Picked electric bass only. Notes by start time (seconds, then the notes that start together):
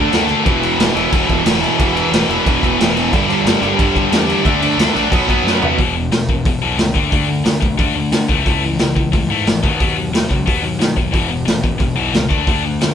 0.12 D2
0.46 E1
0.78 E1
0.95 E1
1.12 E1
1.29 E1
1.44 E1
1.79 E1
2.12 E1
2.29 E1
2.46 E1
2.63 E1
2.79 E1
3.13 G1
3.44 G1
3.62 G1
3.79 G1
3.95 G1
4.12 E2
4.45 D2
4.77 D2
4.95 A#1
5.11 B1
5.29 B1
5.44 F#2
5.79 E1
6.11 E1
6.45 E1
6.62 B1
6.78 C#2
6.95 D2
7.12 D2
7.45 D2
7.62 B1
7.78 D2
7.95 D2
8.12 D3
8.29 C#2
8.46 C#2
8.80 C#2
9.13 C#2
9.29 G#2
9.46 G#1
9.64 D#2
9.81 D#2
10.11 D#2
10.30 C#2
10.47 D#2
10.62 D#2
10.79 D#3
10.97 D#2
11.13 E1
11.47 E1
11.80 E1
11.96 B1
12.13 C#2
12.30 D2
12.47 D2
12.81 D2